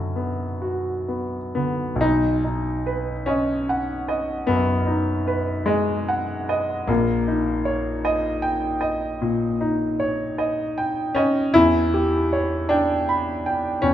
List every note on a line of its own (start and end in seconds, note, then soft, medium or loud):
0.00 2.06 F#2 soft
0.00 1.56 D3 soft
0.00 0.16 B3 soft
0.00 1.56 B4 soft
0.16 0.90 B3 soft
0.62 1.37 F#4 soft
1.08 1.53 B3 soft
1.55 2.03 D3 soft
1.55 2.02 B3 medium
1.96 4.42 B1 soft
2.01 2.43 D#4 medium
2.44 3.11 D#4 soft
2.86 3.52 B4 soft
3.26 4.48 C#4 medium
3.26 3.93 D#5 soft
3.69 4.33 F#5 soft
4.08 4.72 D#5 soft
4.47 5.12 F#2 soft
4.47 5.67 B3 medium
4.87 5.51 D#4 soft
5.27 5.92 B4 soft
5.66 6.87 G#3 medium
5.66 6.32 D#5 soft
6.08 6.73 F#5 soft
6.49 6.89 D#5 soft
6.87 9.17 A#1 medium
6.87 10.77 A#3 medium
7.28 7.90 D#4 soft
7.65 8.28 C#5 soft
8.05 8.66 D#5 soft
8.42 9.05 G5 medium
8.81 9.44 D#5 soft
9.21 9.84 A#2 soft
9.61 10.24 D#4 soft
10.00 10.62 C#5 soft
10.38 11.00 D#5 soft
10.78 11.39 G5 soft
11.15 11.54 C#4 medium
11.15 11.55 D#5 medium
11.54 13.79 E2 medium
11.54 12.70 E4 medium
11.94 12.55 G4 soft
12.33 12.94 C#5 soft
12.69 13.82 D4 medium
12.69 13.30 G5 soft
13.09 13.68 B5 soft
13.46 13.94 G5 soft
13.82 13.94 E2 soft
13.82 13.94 C#4 medium